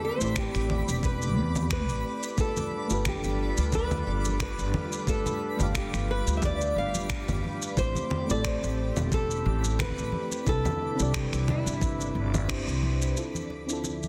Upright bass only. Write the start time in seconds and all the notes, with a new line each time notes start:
0.21 A1
0.55 A1
0.88 E1
1.37 E2
1.90 A1
2.38 G1
2.90 G1
3.24 G1
3.58 D2
4.07 G1
4.59 G1
5.07 G1
5.60 G1
5.94 G1
6.27 D2
6.76 G1
7.28 G1
7.77 A1
8.30 A1
8.64 A1
8.97 E1
9.46 A1
9.98 A1
10.47 C2
11.00 C2
11.33 C2
11.66 G1
12.15 G1
12.67 C2